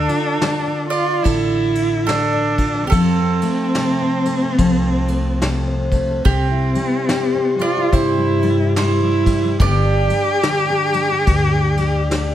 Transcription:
0.00 0.40 D3 medium
0.00 0.88 D4 medium
0.00 0.88 A4 medium
0.00 2.88 A4 medium
0.08 2.57 F4 medium
0.08 ride soft
0.41 1.24 D3 medium
0.41 0.65 D5 medium
0.41 snare loud
0.41 ride medium
0.66 2.08 D5 medium
0.89 1.23 F4 loud
0.89 1.24 D5 medium
0.89 ride soft
1.22 2.92 A1 medium
1.22 2.07 D3 medium
1.22 2.08 E4 loud
1.22 2.05 A4 medium
1.22 kick medium
1.22 ride medium
1.75 ride medium
2.06 2.92 D3 medium
2.06 2.86 D4 medium
2.06 2.85 A4 medium
2.06 2.33 D5 medium
2.06 snare loud
2.06 ride medium
2.34 2.74 D5 medium
2.58 2.87 F4 soft
2.58 kick medium
2.58 ride medium
2.75 2.88 D5 medium
2.85 2.90 B3 medium
2.85 5.91 C4 medium
2.85 2.92 G4 medium
2.90 3.39 F2 medium
2.90 4.57 F3 medium
2.90 5.91 A4 medium
2.90 kick medium
2.90 ride medium
3.19 4.83 C4 medium
3.41 4.24 A3 medium
3.41 ride medium
3.75 4.59 C3 medium
3.75 4.41 A4 medium
3.75 snare medium
3.75 ride medium
4.01 5.66 C5 medium
4.25 5.08 A3 medium
4.25 ride soft
4.43 5.42 A4 medium
4.58 6.22 C2 medium
4.58 6.21 F3 medium
4.58 kick medium
4.58 ride medium
4.84 6.50 C4 medium
5.08 5.91 A3 medium
5.08 ride medium
5.42 6.21 C3 medium
5.42 6.09 A4 medium
5.42 snare medium
5.42 ride medium
5.68 6.22 C5 medium
5.92 6.22 A3 medium
5.92 kick medium
5.92 ride soft
6.10 6.22 A4 medium
6.24 6.73 C2 loud
6.24 7.91 C3 medium
6.24 7.54 C4 medium
6.24 7.55 G4 medium
6.24 kick medium
6.24 ride medium
6.51 7.76 E4 medium
6.75 7.09 G3 medium
6.75 ride soft
7.09 7.57 G3 medium
7.09 9.56 G4 medium
7.09 snare medium
7.09 ride medium
7.34 9.56 C5 medium
7.59 8.17 G3 medium
7.59 7.94 F4 loud
7.59 7.93 D5 medium
7.59 ride soft
7.77 9.56 E4 medium
7.92 9.61 G2 loud
7.92 9.56 C3 medium
7.92 8.76 E4 medium
7.92 8.77 C5 medium
7.92 kick medium
7.92 ride medium
8.18 8.42 G3 medium
8.42 8.76 G3 medium
8.42 ride medium
8.76 9.02 G3 medium
8.76 9.58 E4 medium
8.76 9.57 C5 medium
8.76 snare loud
8.76 ride medium
9.03 9.26 G3 medium
9.26 9.43 G3 medium
9.26 kick medium
9.26 ride medium
9.45 9.60 G3 medium
9.60 10.07 G1 medium
9.60 11.27 G2 medium
9.60 10.09 G3 medium
9.60 9.84 D4 medium
9.60 12.35 G4 loud
9.60 12.35 D5 medium
9.60 kick medium
9.60 ride medium
9.85 10.43 D4 medium
10.10 10.93 G3 medium
10.10 ride medium
10.43 12.11 D3 medium
10.43 10.68 D4 medium
10.43 snare medium
10.43 ride medium
10.70 11.10 D4 medium
10.93 11.77 G3 medium
10.93 ride medium
11.27 12.35 D2 medium
11.27 12.35 G2 medium
11.27 kick medium
11.27 ride medium
11.54 12.11 D4 medium
11.77 12.35 G3 medium
11.77 ride medium
12.11 12.35 D3 medium
12.11 12.35 D4 medium
12.11 snare medium
12.11 ride medium

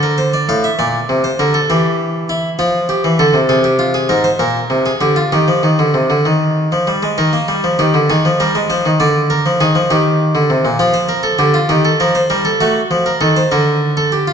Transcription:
0.00 0.47 D3 medium
0.00 0.18 A#4 medium
0.18 0.33 C5 medium
0.34 0.49 D5 medium
0.49 0.68 A2 medium
0.49 0.64 F5 medium
0.64 0.79 E5 medium
0.79 0.98 A#2 medium
0.79 1.23 D5 medium
1.09 1.28 C3 medium
1.24 1.39 C5 medium
1.39 1.58 D3 medium
1.39 1.54 A#4 medium
1.54 1.69 A4 medium
1.70 2.57 E3 medium
1.70 2.28 G4 medium
2.29 2.48 E4 medium
2.59 3.03 F3 medium
2.59 2.78 F4 medium
2.89 3.08 G4 medium
3.04 3.19 E3 medium
3.19 3.34 D3 medium
3.19 3.38 A4 medium
3.34 3.48 C3 medium
3.49 4.08 C3 medium
3.49 3.64 G#4 medium
3.64 3.79 G4 medium
3.79 3.94 F4 medium
3.94 4.09 G#4 medium
4.09 4.28 G#2 medium
4.09 4.24 A#4 medium
4.24 4.39 C5 medium
4.39 4.58 A#2 medium
4.39 4.84 A#4 medium
4.70 4.89 C3 medium
4.86 5.01 G#4 medium
5.01 5.20 D3 medium
5.01 5.16 G4 medium
5.16 5.31 F4 medium
5.32 5.47 D#3 medium
5.32 6.83 G4 medium
5.48 5.63 F3 medium
5.63 5.78 D#3 medium
5.79 5.94 D3 medium
5.94 6.09 C3 medium
6.10 6.25 D3 medium
6.25 6.70 D#3 medium
6.72 6.87 F3 medium
6.87 7.02 G3 medium
7.03 7.18 G#3 medium
7.18 7.33 D#3 medium
7.18 7.77 A#4 medium
7.33 7.48 A#3 medium
7.48 7.63 G3 medium
7.64 7.79 F3 medium
7.79 7.94 D#3 medium
7.79 7.98 G4 medium
7.94 8.09 D3 medium
8.10 8.25 D#3 medium
8.10 8.29 G#4 medium
8.25 8.40 F3 medium
8.40 8.55 G3 medium
8.40 8.59 A#4 medium
8.55 8.70 G#3 medium
8.70 8.85 F3 medium
8.70 8.89 C5 medium
8.86 9.00 D#3 medium
9.00 9.44 D3 medium
9.00 9.19 D5 medium
9.30 9.49 A#4 medium
9.46 9.60 F3 medium
9.61 9.75 D#3 medium
9.61 9.79 G#4 medium
9.75 9.90 F3 medium
9.90 10.34 D#3 medium
9.90 10.77 G4 medium
10.35 10.49 D3 medium
10.50 10.64 C3 medium
10.65 10.79 A#2 medium
10.79 11.37 F3 loud
10.79 10.94 F4 medium
10.94 11.09 C5 medium
11.09 11.24 A#4 medium
11.23 11.38 A4 medium
11.39 11.58 D3 loud
11.39 11.54 G4 medium
11.54 11.69 F4 medium
11.69 11.88 D#3 medium
11.69 11.84 G4 medium
11.85 12.00 A4 medium
12.00 12.19 F3 loud
12.00 12.15 A#4 medium
12.15 12.30 C5 medium
12.30 12.49 G3 medium
12.30 12.45 A#4 medium
12.45 12.60 A4 medium
12.61 12.79 A3 medium
12.61 13.05 F#4 medium
12.91 13.10 F3 medium
13.06 13.21 A#4 medium
13.21 13.40 D#3 medium
13.21 13.36 A4 medium
13.37 13.51 C5 medium
13.52 14.33 D3 medium
13.52 13.96 A#4 medium
13.97 14.12 A4 medium
14.12 14.27 G4 medium
14.28 14.33 F4 medium

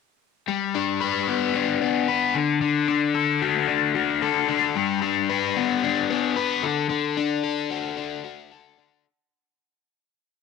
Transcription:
0.48 1.81 G3 medium
0.75 1.55 D4 medium
1.02 2.07 B4 medium
1.29 1.81 B3 medium
1.55 2.88 D4 medium
1.82 2.35 B3 medium
2.08 2.35 B4 medium
2.34 2.60 D3 medium
2.61 3.95 D3 medium
2.88 3.67 D4 medium
3.15 4.21 A4 medium
3.42 3.93 F#4 medium
3.68 4.48 D4 medium
3.95 4.75 F#4 medium
4.22 4.76 A4 medium
4.49 5.02 D4 medium
4.76 6.10 G3 medium
5.02 5.83 D4 medium
5.30 6.35 B4 medium
5.56 6.09 B3 medium
5.83 7.17 D4 medium
6.10 6.63 B3 medium
6.36 6.63 B4 medium
6.63 6.88 D3 medium
6.90 8.24 D3 medium
7.17 7.96 D4 medium
7.43 8.50 A4 medium
7.70 8.22 F#4 medium
7.97 8.77 D4 medium
8.24 9.04 F#4 medium
8.51 9.05 A4 medium
8.78 9.05 D4 medium

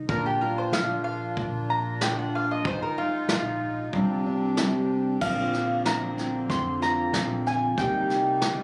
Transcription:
0.08 0.70 A#1 medium
0.08 2.65 A#2 medium
0.08 2.62 A#3 medium
0.08 2.62 D4 medium
0.08 3.89 F4 medium
0.08 0.24 A#4 medium
0.08 kick medium
0.26 0.40 G4 medium
0.41 5.22 F4 medium
0.41 0.56 A#4 medium
0.58 0.72 C5 medium
0.72 1.33 A#1 medium
0.72 2.62 F3 medium
0.72 1.03 F5 medium
0.72 snare medium
1.04 1.36 F5 loud
1.37 2.65 A#1 medium
1.37 kick medium
1.70 2.01 A#5 medium
2.01 2.61 D4 medium
2.01 2.17 G5 medium
2.01 snare medium
2.19 2.33 F#5 medium
2.35 2.49 F5 medium
2.51 2.65 D#5 medium
2.64 3.26 G#1 medium
2.64 3.89 G#2 medium
2.64 3.91 G#3 medium
2.64 3.91 D#4 medium
2.64 2.81 C5 medium
2.64 kick medium
2.82 2.97 A#4 medium
2.97 3.89 D#4 medium
2.97 3.29 F4 medium
3.28 3.90 A#1 medium
3.28 3.89 F3 medium
3.28 4.54 F4 medium
3.28 snare medium
3.93 5.17 C2 medium
3.93 5.17 C3 medium
3.93 5.21 C3 medium
3.93 4.56 G3 medium
3.93 5.20 C4 medium
3.93 5.18 C4 medium
3.93 5.20 D4 medium
3.93 4.25 D4 medium
3.93 5.20 G4 medium
3.93 kick medium
4.26 5.18 D4 medium
4.57 5.17 G3 medium
4.57 snare loud
5.21 6.45 A#1 medium
5.21 6.49 A#2 medium
5.21 7.75 D3 medium
5.21 8.63 A#3 medium
5.21 7.75 C4 medium
5.21 6.17 C4 medium
5.21 5.84 D4 medium
5.21 6.81 F4 medium
5.21 5.81 F5 medium
5.21 kick medium
5.21 snare soft
5.21 crash medium
5.53 snare soft
5.84 7.13 F3 medium
5.84 7.73 D4 medium
5.84 6.50 A#5 medium
5.84 snare medium
6.17 7.74 C4 medium
6.17 snare soft
6.49 7.10 F2 medium
6.49 7.78 F2 medium
6.49 6.82 C6 medium
6.49 kick medium
6.49 snare soft
6.82 7.78 F4 medium
6.82 7.47 A#5 medium
6.82 snare soft
7.13 7.74 A#1 medium
7.13 7.74 F3 medium
7.13 snare medium
7.46 7.78 G#5 medium
7.46 snare soft
7.77 8.63 C2 medium
7.77 8.41 C3 medium
7.77 8.63 C3 medium
7.77 8.63 G3 medium
7.77 8.63 A#3 medium
7.77 8.63 D#4 medium
7.77 8.42 D#4 medium
7.77 8.63 G4 medium
7.77 8.63 G5 loud
7.77 kick medium
7.77 snare soft
8.10 snare soft
8.42 8.63 D#3 medium
8.42 8.63 D#4 medium
8.42 snare loud

